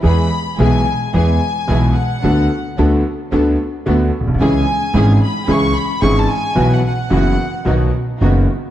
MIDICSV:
0, 0, Header, 1, 5, 480
1, 0, Start_track
1, 0, Key_signature, 4, "major"
1, 0, Tempo, 545455
1, 40, Time_signature, 4, 2, 24, 8
1, 7660, End_track
2, 0, Start_track
2, 0, Title_t, "Violin section"
2, 0, Program_c, 0, 48
2, 50, Note_on_c, 0, 83, 89
2, 497, Note_off_c, 0, 83, 0
2, 540, Note_on_c, 0, 80, 90
2, 1015, Note_off_c, 0, 80, 0
2, 1025, Note_on_c, 0, 80, 90
2, 1704, Note_off_c, 0, 80, 0
2, 1743, Note_on_c, 0, 78, 80
2, 2451, Note_off_c, 0, 78, 0
2, 3875, Note_on_c, 0, 80, 93
2, 4553, Note_off_c, 0, 80, 0
2, 4600, Note_on_c, 0, 83, 87
2, 4833, Note_off_c, 0, 83, 0
2, 4850, Note_on_c, 0, 85, 104
2, 5077, Note_on_c, 0, 83, 92
2, 5078, Note_off_c, 0, 85, 0
2, 5310, Note_off_c, 0, 83, 0
2, 5310, Note_on_c, 0, 85, 99
2, 5426, Note_off_c, 0, 85, 0
2, 5437, Note_on_c, 0, 81, 89
2, 5550, Note_off_c, 0, 81, 0
2, 5558, Note_on_c, 0, 80, 96
2, 5911, Note_off_c, 0, 80, 0
2, 5917, Note_on_c, 0, 78, 81
2, 6030, Note_off_c, 0, 78, 0
2, 6043, Note_on_c, 0, 78, 79
2, 6965, Note_off_c, 0, 78, 0
2, 7660, End_track
3, 0, Start_track
3, 0, Title_t, "String section"
3, 0, Program_c, 1, 48
3, 33, Note_on_c, 1, 59, 66
3, 34, Note_on_c, 1, 64, 64
3, 37, Note_on_c, 1, 68, 72
3, 241, Note_off_c, 1, 59, 0
3, 241, Note_off_c, 1, 64, 0
3, 243, Note_off_c, 1, 68, 0
3, 520, Note_on_c, 1, 64, 68
3, 522, Note_on_c, 1, 59, 72
3, 523, Note_on_c, 1, 68, 80
3, 726, Note_off_c, 1, 64, 0
3, 727, Note_off_c, 1, 59, 0
3, 727, Note_off_c, 1, 68, 0
3, 1005, Note_on_c, 1, 59, 69
3, 1008, Note_on_c, 1, 64, 64
3, 1008, Note_on_c, 1, 68, 80
3, 1209, Note_off_c, 1, 59, 0
3, 1210, Note_off_c, 1, 64, 0
3, 1210, Note_off_c, 1, 68, 0
3, 1487, Note_on_c, 1, 59, 69
3, 1487, Note_on_c, 1, 64, 66
3, 1489, Note_on_c, 1, 68, 76
3, 1690, Note_off_c, 1, 64, 0
3, 1691, Note_off_c, 1, 59, 0
3, 1692, Note_off_c, 1, 68, 0
3, 1969, Note_on_c, 1, 59, 67
3, 1969, Note_on_c, 1, 62, 67
3, 1971, Note_on_c, 1, 69, 75
3, 2169, Note_off_c, 1, 59, 0
3, 2169, Note_off_c, 1, 62, 0
3, 2171, Note_off_c, 1, 69, 0
3, 2442, Note_on_c, 1, 59, 76
3, 2446, Note_on_c, 1, 62, 71
3, 2447, Note_on_c, 1, 69, 83
3, 2643, Note_off_c, 1, 59, 0
3, 2645, Note_off_c, 1, 62, 0
3, 2646, Note_off_c, 1, 69, 0
3, 2923, Note_on_c, 1, 59, 72
3, 2923, Note_on_c, 1, 62, 66
3, 2928, Note_on_c, 1, 69, 84
3, 3122, Note_off_c, 1, 59, 0
3, 3122, Note_off_c, 1, 62, 0
3, 3124, Note_off_c, 1, 69, 0
3, 3401, Note_on_c, 1, 59, 75
3, 3403, Note_on_c, 1, 62, 66
3, 3405, Note_on_c, 1, 69, 79
3, 3599, Note_off_c, 1, 59, 0
3, 3600, Note_off_c, 1, 62, 0
3, 3601, Note_off_c, 1, 69, 0
3, 3879, Note_on_c, 1, 61, 70
3, 3879, Note_on_c, 1, 64, 63
3, 3879, Note_on_c, 1, 68, 83
3, 4075, Note_off_c, 1, 61, 0
3, 4075, Note_off_c, 1, 64, 0
3, 4075, Note_off_c, 1, 68, 0
3, 4356, Note_on_c, 1, 61, 81
3, 4358, Note_on_c, 1, 64, 73
3, 4358, Note_on_c, 1, 68, 88
3, 4553, Note_off_c, 1, 61, 0
3, 4554, Note_off_c, 1, 64, 0
3, 4554, Note_off_c, 1, 68, 0
3, 4825, Note_on_c, 1, 61, 74
3, 4827, Note_on_c, 1, 68, 81
3, 4828, Note_on_c, 1, 64, 74
3, 5026, Note_off_c, 1, 61, 0
3, 5027, Note_off_c, 1, 68, 0
3, 5028, Note_off_c, 1, 64, 0
3, 5301, Note_on_c, 1, 61, 72
3, 5304, Note_on_c, 1, 64, 65
3, 5305, Note_on_c, 1, 68, 79
3, 5503, Note_off_c, 1, 61, 0
3, 5505, Note_off_c, 1, 64, 0
3, 5505, Note_off_c, 1, 68, 0
3, 5783, Note_on_c, 1, 59, 68
3, 5784, Note_on_c, 1, 64, 65
3, 5785, Note_on_c, 1, 66, 75
3, 5985, Note_off_c, 1, 59, 0
3, 5985, Note_off_c, 1, 64, 0
3, 5986, Note_off_c, 1, 66, 0
3, 6261, Note_on_c, 1, 64, 66
3, 6262, Note_on_c, 1, 59, 77
3, 6265, Note_on_c, 1, 66, 84
3, 6466, Note_off_c, 1, 59, 0
3, 6466, Note_off_c, 1, 64, 0
3, 6468, Note_off_c, 1, 66, 0
3, 6744, Note_on_c, 1, 59, 71
3, 6744, Note_on_c, 1, 63, 65
3, 6747, Note_on_c, 1, 66, 79
3, 6949, Note_off_c, 1, 59, 0
3, 6949, Note_off_c, 1, 63, 0
3, 6951, Note_off_c, 1, 66, 0
3, 7230, Note_on_c, 1, 59, 70
3, 7231, Note_on_c, 1, 63, 61
3, 7233, Note_on_c, 1, 66, 76
3, 7436, Note_off_c, 1, 59, 0
3, 7436, Note_off_c, 1, 63, 0
3, 7437, Note_off_c, 1, 66, 0
3, 7660, End_track
4, 0, Start_track
4, 0, Title_t, "Grand piano"
4, 0, Program_c, 2, 0
4, 23, Note_on_c, 2, 52, 73
4, 24, Note_on_c, 2, 56, 58
4, 28, Note_on_c, 2, 59, 59
4, 30, Note_on_c, 2, 40, 75
4, 32, Note_on_c, 2, 68, 70
4, 236, Note_off_c, 2, 56, 0
4, 238, Note_off_c, 2, 52, 0
4, 238, Note_off_c, 2, 59, 0
4, 239, Note_off_c, 2, 40, 0
4, 240, Note_off_c, 2, 68, 0
4, 523, Note_on_c, 2, 52, 70
4, 523, Note_on_c, 2, 59, 59
4, 524, Note_on_c, 2, 35, 79
4, 526, Note_on_c, 2, 47, 77
4, 526, Note_on_c, 2, 68, 69
4, 527, Note_on_c, 2, 56, 60
4, 727, Note_off_c, 2, 59, 0
4, 728, Note_off_c, 2, 35, 0
4, 728, Note_off_c, 2, 52, 0
4, 729, Note_off_c, 2, 47, 0
4, 729, Note_off_c, 2, 68, 0
4, 730, Note_off_c, 2, 56, 0
4, 999, Note_on_c, 2, 52, 75
4, 1002, Note_on_c, 2, 56, 61
4, 1003, Note_on_c, 2, 40, 72
4, 1003, Note_on_c, 2, 68, 69
4, 1004, Note_on_c, 2, 59, 59
4, 1208, Note_off_c, 2, 40, 0
4, 1208, Note_off_c, 2, 52, 0
4, 1208, Note_off_c, 2, 56, 0
4, 1208, Note_off_c, 2, 68, 0
4, 1209, Note_off_c, 2, 59, 0
4, 1474, Note_on_c, 2, 52, 67
4, 1477, Note_on_c, 2, 47, 80
4, 1477, Note_on_c, 2, 59, 63
4, 1478, Note_on_c, 2, 56, 62
4, 1479, Note_on_c, 2, 35, 75
4, 1483, Note_on_c, 2, 68, 73
4, 1684, Note_off_c, 2, 52, 0
4, 1686, Note_off_c, 2, 47, 0
4, 1686, Note_off_c, 2, 56, 0
4, 1686, Note_off_c, 2, 59, 0
4, 1687, Note_off_c, 2, 35, 0
4, 1688, Note_off_c, 2, 68, 0
4, 1970, Note_on_c, 2, 50, 80
4, 1971, Note_on_c, 2, 59, 64
4, 1972, Note_on_c, 2, 38, 78
4, 1975, Note_on_c, 2, 57, 63
4, 1975, Note_on_c, 2, 66, 75
4, 2170, Note_off_c, 2, 59, 0
4, 2171, Note_off_c, 2, 38, 0
4, 2171, Note_off_c, 2, 50, 0
4, 2172, Note_off_c, 2, 57, 0
4, 2173, Note_off_c, 2, 66, 0
4, 2454, Note_on_c, 2, 38, 84
4, 2454, Note_on_c, 2, 50, 82
4, 2454, Note_on_c, 2, 57, 63
4, 2456, Note_on_c, 2, 59, 62
4, 2456, Note_on_c, 2, 66, 76
4, 2649, Note_off_c, 2, 38, 0
4, 2649, Note_off_c, 2, 50, 0
4, 2649, Note_off_c, 2, 57, 0
4, 2650, Note_off_c, 2, 59, 0
4, 2650, Note_off_c, 2, 66, 0
4, 2922, Note_on_c, 2, 38, 80
4, 2922, Note_on_c, 2, 50, 76
4, 2922, Note_on_c, 2, 57, 59
4, 2927, Note_on_c, 2, 59, 61
4, 2928, Note_on_c, 2, 66, 70
4, 3121, Note_off_c, 2, 38, 0
4, 3121, Note_off_c, 2, 57, 0
4, 3123, Note_off_c, 2, 50, 0
4, 3124, Note_off_c, 2, 59, 0
4, 3124, Note_off_c, 2, 66, 0
4, 3396, Note_on_c, 2, 50, 84
4, 3397, Note_on_c, 2, 57, 62
4, 3400, Note_on_c, 2, 38, 83
4, 3400, Note_on_c, 2, 59, 66
4, 3402, Note_on_c, 2, 66, 81
4, 3597, Note_off_c, 2, 50, 0
4, 3597, Note_off_c, 2, 57, 0
4, 3598, Note_off_c, 2, 38, 0
4, 3598, Note_off_c, 2, 59, 0
4, 3599, Note_off_c, 2, 66, 0
4, 3698, Note_on_c, 2, 34, 49
4, 3756, Note_off_c, 2, 34, 0
4, 3763, Note_on_c, 2, 35, 63
4, 3818, Note_off_c, 2, 35, 0
4, 3823, Note_on_c, 2, 36, 72
4, 3877, Note_off_c, 2, 36, 0
4, 3883, Note_on_c, 2, 37, 82
4, 3883, Note_on_c, 2, 49, 83
4, 3883, Note_on_c, 2, 56, 62
4, 3883, Note_on_c, 2, 61, 63
4, 3884, Note_on_c, 2, 52, 74
4, 3888, Note_on_c, 2, 68, 79
4, 4077, Note_off_c, 2, 37, 0
4, 4077, Note_off_c, 2, 56, 0
4, 4077, Note_off_c, 2, 61, 0
4, 4078, Note_off_c, 2, 49, 0
4, 4078, Note_off_c, 2, 52, 0
4, 4080, Note_off_c, 2, 68, 0
4, 4344, Note_on_c, 2, 52, 71
4, 4346, Note_on_c, 2, 44, 83
4, 4350, Note_on_c, 2, 32, 88
4, 4351, Note_on_c, 2, 56, 67
4, 4351, Note_on_c, 2, 68, 83
4, 4352, Note_on_c, 2, 61, 69
4, 4547, Note_off_c, 2, 52, 0
4, 4548, Note_off_c, 2, 44, 0
4, 4550, Note_off_c, 2, 32, 0
4, 4550, Note_off_c, 2, 56, 0
4, 4550, Note_off_c, 2, 68, 0
4, 4551, Note_off_c, 2, 61, 0
4, 4818, Note_on_c, 2, 52, 67
4, 4819, Note_on_c, 2, 49, 83
4, 4821, Note_on_c, 2, 56, 62
4, 4822, Note_on_c, 2, 37, 80
4, 4822, Note_on_c, 2, 61, 63
4, 4826, Note_on_c, 2, 68, 73
4, 5023, Note_off_c, 2, 49, 0
4, 5023, Note_off_c, 2, 52, 0
4, 5024, Note_off_c, 2, 56, 0
4, 5025, Note_off_c, 2, 37, 0
4, 5025, Note_off_c, 2, 61, 0
4, 5027, Note_off_c, 2, 68, 0
4, 5298, Note_on_c, 2, 44, 87
4, 5298, Note_on_c, 2, 52, 72
4, 5299, Note_on_c, 2, 61, 66
4, 5300, Note_on_c, 2, 32, 83
4, 5302, Note_on_c, 2, 56, 63
4, 5304, Note_on_c, 2, 68, 78
4, 5501, Note_off_c, 2, 44, 0
4, 5501, Note_off_c, 2, 52, 0
4, 5502, Note_off_c, 2, 61, 0
4, 5503, Note_off_c, 2, 32, 0
4, 5504, Note_off_c, 2, 56, 0
4, 5504, Note_off_c, 2, 68, 0
4, 5766, Note_on_c, 2, 47, 84
4, 5767, Note_on_c, 2, 52, 70
4, 5768, Note_on_c, 2, 54, 62
4, 5770, Note_on_c, 2, 35, 84
4, 5770, Note_on_c, 2, 59, 61
4, 5770, Note_on_c, 2, 66, 80
4, 5976, Note_off_c, 2, 47, 0
4, 5977, Note_off_c, 2, 52, 0
4, 5977, Note_off_c, 2, 54, 0
4, 5978, Note_off_c, 2, 35, 0
4, 5978, Note_off_c, 2, 59, 0
4, 5978, Note_off_c, 2, 66, 0
4, 6249, Note_on_c, 2, 52, 70
4, 6250, Note_on_c, 2, 42, 81
4, 6251, Note_on_c, 2, 54, 60
4, 6255, Note_on_c, 2, 30, 82
4, 6257, Note_on_c, 2, 59, 61
4, 6257, Note_on_c, 2, 66, 77
4, 6460, Note_off_c, 2, 42, 0
4, 6460, Note_off_c, 2, 52, 0
4, 6461, Note_off_c, 2, 54, 0
4, 6463, Note_off_c, 2, 30, 0
4, 6464, Note_off_c, 2, 59, 0
4, 6464, Note_off_c, 2, 66, 0
4, 6729, Note_on_c, 2, 51, 62
4, 6735, Note_on_c, 2, 47, 80
4, 6735, Note_on_c, 2, 66, 72
4, 6736, Note_on_c, 2, 35, 73
4, 6736, Note_on_c, 2, 54, 60
4, 6736, Note_on_c, 2, 59, 61
4, 6942, Note_off_c, 2, 51, 0
4, 6945, Note_off_c, 2, 35, 0
4, 6945, Note_off_c, 2, 47, 0
4, 6945, Note_off_c, 2, 54, 0
4, 6945, Note_off_c, 2, 59, 0
4, 6945, Note_off_c, 2, 66, 0
4, 7229, Note_on_c, 2, 42, 81
4, 7230, Note_on_c, 2, 54, 60
4, 7231, Note_on_c, 2, 30, 77
4, 7232, Note_on_c, 2, 51, 70
4, 7233, Note_on_c, 2, 66, 73
4, 7235, Note_on_c, 2, 59, 60
4, 7435, Note_off_c, 2, 42, 0
4, 7436, Note_off_c, 2, 30, 0
4, 7436, Note_off_c, 2, 54, 0
4, 7437, Note_off_c, 2, 51, 0
4, 7437, Note_off_c, 2, 66, 0
4, 7438, Note_off_c, 2, 59, 0
4, 7660, End_track
5, 0, Start_track
5, 0, Title_t, "Upright bass"
5, 0, Program_c, 3, 32
5, 34, Note_on_c, 3, 40, 85
5, 241, Note_off_c, 3, 40, 0
5, 515, Note_on_c, 3, 35, 87
5, 723, Note_off_c, 3, 35, 0
5, 1005, Note_on_c, 3, 40, 87
5, 1209, Note_off_c, 3, 40, 0
5, 1493, Note_on_c, 3, 35, 86
5, 1694, Note_off_c, 3, 35, 0
5, 1969, Note_on_c, 3, 38, 90
5, 2170, Note_off_c, 3, 38, 0
5, 2448, Note_on_c, 3, 38, 85
5, 2646, Note_off_c, 3, 38, 0
5, 2922, Note_on_c, 3, 38, 95
5, 3121, Note_off_c, 3, 38, 0
5, 3402, Note_on_c, 3, 38, 94
5, 3600, Note_off_c, 3, 38, 0
5, 3699, Note_on_c, 3, 34, 46
5, 3756, Note_off_c, 3, 34, 0
5, 3760, Note_on_c, 3, 35, 58
5, 3816, Note_off_c, 3, 35, 0
5, 3822, Note_on_c, 3, 36, 69
5, 3872, Note_off_c, 3, 36, 0
5, 3877, Note_on_c, 3, 37, 92
5, 4074, Note_off_c, 3, 37, 0
5, 4346, Note_on_c, 3, 32, 94
5, 4548, Note_off_c, 3, 32, 0
5, 4821, Note_on_c, 3, 37, 92
5, 5025, Note_off_c, 3, 37, 0
5, 5299, Note_on_c, 3, 32, 84
5, 5502, Note_off_c, 3, 32, 0
5, 5778, Note_on_c, 3, 35, 90
5, 5982, Note_off_c, 3, 35, 0
5, 6255, Note_on_c, 3, 30, 85
5, 6463, Note_off_c, 3, 30, 0
5, 6743, Note_on_c, 3, 35, 88
5, 6949, Note_off_c, 3, 35, 0
5, 7227, Note_on_c, 3, 30, 83
5, 7434, Note_off_c, 3, 30, 0
5, 7660, End_track
0, 0, End_of_file